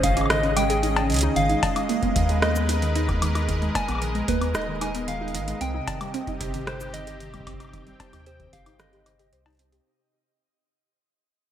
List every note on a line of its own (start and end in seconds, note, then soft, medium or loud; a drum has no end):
0.00 0.29 G#1 medium
0.00 1.36 C#3 medium
0.00 3.06 C#4 medium
0.00 0.08 C#4 medium
0.00 5.61 G#4 medium
0.00 9.86 D#5 medium
0.00 9.87 D#5 medium
0.00 0.32 F5 loud
0.00 kick loud
0.00 closed hi-hat medium
0.17 0.24 D#4 medium
0.17 closed hi-hat medium
0.17 high woodblock soft
0.21 high woodblock soft
0.26 high woodblock soft
0.30 1.11 G#1 medium
0.30 0.34 D#3 medium
0.30 0.56 D#5 loud
0.30 cross-stick loud
0.30 closed hi-hat medium
0.43 0.51 C#4 medium
0.43 closed hi-hat soft
0.56 0.64 G#3 medium
0.56 1.06 G5 loud
0.56 closed hi-hat medium
0.56 high woodblock soft
0.70 0.74 G#4 loud
0.70 closed hi-hat medium
0.83 0.90 D#4 medium
0.83 closed hi-hat medium
0.96 1.07 C#4 medium
0.96 closed hi-hat soft
0.96 cowbell medium
1.09 1.29 C#2 loud
1.09 1.17 D#3 medium
1.09 closed hi-hat soft
1.12 closed hi-hat soft
1.14 closed hi-hat medium
1.16 closed hi-hat medium
1.19 closed hi-hat medium
1.21 1.34 D#4 loud
1.21 closed hi-hat medium
1.36 1.55 G#1 loud
1.36 1.47 D#3 medium
1.36 5.61 G#3 medium
1.36 2.44 F5 loud
1.36 closed hi-hat medium
1.49 1.57 D#4 medium
1.49 closed hi-hat soft
1.63 1.67 D#3 medium
1.63 kick loud
1.63 closed hi-hat medium
1.63 cowbell loud
1.76 1.83 G#3 medium
1.76 closed hi-hat medium
1.76 high woodblock medium
1.83 6.64 A#4 medium
1.89 1.94 A#3 medium
1.89 closed hi-hat medium
2.02 2.10 B3 medium
2.02 kick medium
2.02 closed hi-hat soft
2.08 5.61 B4 medium
2.16 3.69 D#2 medium
2.16 2.20 D#3 medium
2.16 kick loud
2.16 closed hi-hat medium
2.29 2.34 G#3 medium
2.29 closed hi-hat soft
2.42 2.47 A#3 loud
2.42 3.22 D#5 loud
2.42 cross-stick loud
2.42 closed hi-hat medium
2.56 2.60 B3 medium
2.56 closed hi-hat soft
2.56 shaker medium
2.69 2.76 D#4 medium
2.69 closed hi-hat medium
2.82 2.90 D#3 medium
2.82 closed hi-hat medium
2.95 3.03 D#4 loud
2.95 closed hi-hat medium
3.09 3.13 B3 medium
3.09 kick loud
3.09 closed hi-hat soft
3.09 high woodblock soft
3.22 3.33 D#3 medium
3.22 closed hi-hat medium
3.22 high woodblock medium
3.35 3.43 D#4 medium
3.35 closed hi-hat medium
3.35 high woodblock soft
3.48 3.53 D#3 medium
3.48 kick medium
3.48 closed hi-hat medium
3.62 3.69 G#3 medium
3.62 closed hi-hat soft
3.75 3.79 A#3 medium
3.75 4.25 G#5 loud
3.75 kick loud
3.75 closed hi-hat medium
3.75 cowbell loud
3.88 4.22 A#1 loud
3.88 3.96 B3 medium
3.88 closed hi-hat medium
3.88 high woodblock soft
3.92 high woodblock soft
3.95 high woodblock soft
3.98 4.06 D#3 medium
3.98 closed hi-hat medium
3.98 high woodblock medium
4.15 4.19 G#3 medium
4.15 closed hi-hat soft
4.28 4.54 D#2 medium
4.28 4.33 A#3 loud
4.28 4.53 B4 loud
4.28 kick loud
4.28 closed hi-hat medium
4.41 4.46 B3 medium
4.41 closed hi-hat medium
4.41 high woodblock medium
4.55 5.36 D#1 medium
4.55 4.62 D#4 medium
4.55 4.67 D#5 loud
4.55 cross-stick loud
4.55 closed hi-hat medium
4.55 shaker medium
4.62 closed hi-hat soft
4.68 4.75 D#3 medium
4.81 4.89 D#4 loud
4.81 4.93 G#5 loud
4.81 closed hi-hat medium
4.81 high woodblock medium
4.94 4.99 B3 medium
4.94 closed hi-hat medium
5.08 5.19 D#3 medium
5.08 5.57 F5 loud
5.08 closed hi-hat medium
5.21 5.29 D#4 medium
5.28 closed hi-hat soft
5.34 5.54 G#1 loud
5.34 5.39 D#3 medium
5.34 closed hi-hat medium
5.48 5.55 G#3 medium
5.48 closed hi-hat soft
5.61 5.80 C2 loud
5.61 9.86 C3 medium
5.61 5.65 C4 medium
5.61 6.37 G5 loud
5.61 closed hi-hat medium
5.74 5.82 D#4 medium
5.87 5.92 D#3 medium
5.87 kick loud
5.87 closed hi-hat loud
5.87 cowbell loud
6.01 6.05 G3 medium
6.01 closed hi-hat medium
6.01 high woodblock medium
6.14 6.19 C4 loud
6.14 9.86 G4 medium
6.14 closed hi-hat medium
6.20 9.86 C4 medium
6.27 6.32 D#4 medium
6.27 kick medium
6.27 closed hi-hat soft
6.41 7.94 G1 medium
6.41 6.48 G4 medium
6.41 kick loud
6.41 closed hi-hat medium
6.54 6.61 D#3 medium
6.54 closed hi-hat medium
6.67 6.75 G4 loud
6.67 6.95 C5 loud
6.67 cross-stick loud
6.67 closed hi-hat medium
6.80 6.85 D#4 medium
6.80 closed hi-hat soft
6.80 shaker medium
6.93 7.05 D#3 medium
6.93 7.47 D#5 loud
6.93 closed hi-hat medium
7.07 7.15 G4 medium
7.07 closed hi-hat medium
7.20 7.25 D#3 medium
7.20 closed hi-hat medium
7.34 7.41 G3 medium
7.34 kick medium
7.34 closed hi-hat soft
7.34 high woodblock soft
7.39 9.86 G5 medium
7.39 kick medium
7.47 7.51 C4 medium
7.47 kick medium
7.47 closed hi-hat loud
7.47 high woodblock medium
7.54 kick loud
7.60 7.68 D#4 medium
7.60 closed hi-hat soft
7.60 high woodblock medium
7.65 high woodblock soft
7.69 high woodblock soft
7.73 7.78 D#3 medium
7.73 kick medium
7.73 closed hi-hat medium
7.73 high woodblock soft
7.78 high woodblock soft
7.82 high woodblock soft
7.87 7.91 G3 medium
7.87 closed hi-hat soft
8.00 8.04 C4 loud
8.00 kick loud
8.00 closed hi-hat loud
8.00 cowbell loud
8.13 8.47 D#2 loud
8.13 8.18 D#4 medium
8.13 closed hi-hat medium
8.13 high woodblock medium
8.26 8.34 G4 medium
8.26 8.54 C5 loud
8.26 closed hi-hat medium
8.40 8.47 D#3 medium
8.40 kick medium
8.40 closed hi-hat soft
8.53 8.79 G1 medium
8.53 8.60 G4 loud
8.53 8.81 F5 loud
8.53 kick loud
8.53 closed hi-hat medium
8.66 8.71 D#4 medium
8.66 closed hi-hat medium
8.66 high woodblock medium
8.79 9.32 G1 medium
8.79 8.91 D#3 medium
8.79 9.59 D#5 loud
8.79 cross-stick loud
8.79 closed hi-hat medium
8.79 shaker medium
8.93 9.00 G4 medium
8.93 closed hi-hat soft
9.06 9.17 C5 medium
9.06 closed hi-hat medium
9.06 high woodblock medium
9.19 9.31 G4 loud
9.19 closed hi-hat medium
9.33 9.80 C2 loud
9.33 9.40 C5 medium
9.33 closed hi-hat medium
9.46 9.53 D#4 medium
9.46 closed hi-hat soft
9.46 cowbell medium
9.48 closed hi-hat soft
9.50 closed hi-hat soft
9.53 closed hi-hat soft
9.55 closed hi-hat soft
9.57 closed hi-hat soft
9.59 9.67 C4 medium
9.59 closed hi-hat medium
9.72 9.77 G4 medium
9.72 closed hi-hat medium